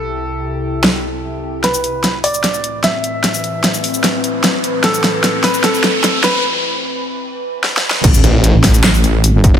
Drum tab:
CC |------------------------------------------------|------------------------------------------------|------------------------------------------------|------------------------------------------------|
HH |------------------------------------------------|x-----x-----x-----o-----x-----x-----x-----x-----|x-----x-----x-----o-----x-----x-----x-----x-----|x-----x-----x-----o-----x-----x-----x-----x-----|
SH |------------------------------------------------|---x-----------------x-----x--------------------|---x-----------x-----x--------------------------|---x-----------------x-----x--------------------|
CP |------------------------------------------------|------------------------------------------------|------------------------------------------------|------------------------------------------------|
SD |------------------------o-----------------------|o-----------o-----------o-----------o-----------|o-----------o-----------o-----------o-----------|o-----o-----o-----o-----o-----o-----o-----o-----|
BD |------------------------------------------------|------------------------------------------------|------------------------------------------------|------------------------------------------------|

CC |------------------------------------------------|x-----------------------------------------------|
HH |------------------------------------------------|x-----x-----x-----o-----x-----x-----x-----x-----|
SH |------------------------------------------------|---x-----------------x-----x--------------------|
CP |------------------------------------------------|------------------------x-----------------------|
SD |------------------------------------o---o---o---|------------------o-----o-----------------------|
BD |------------------------------------------------|o-----------------o-----------------------o-----|